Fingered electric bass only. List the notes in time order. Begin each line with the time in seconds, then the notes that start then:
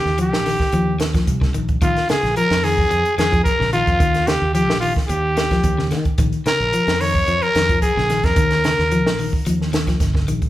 0.05 D#2
0.33 A#1
0.73 D#2
1.27 C2
1.55 A#1
1.82 A#1
2.09 muted fingered electric bass stroke
2.23 A#1
2.51 F2
2.90 F2
3.18 F2
3.60 A#1
3.87 F2
4.00 D#2
4.42 D#2
4.69 A#1
5.09 D#2
5.64 D#2
5.91 D#3
6.18 A#1
6.46 muted fingered electric bass stroke
6.60 A#1
6.87 F2
7.28 F2
7.55 F2
7.97 A#1
8.24 F2
8.37 D#2
8.79 D#2
9.06 A#1
9.47 D#2
10.00 G1
10.28 A#1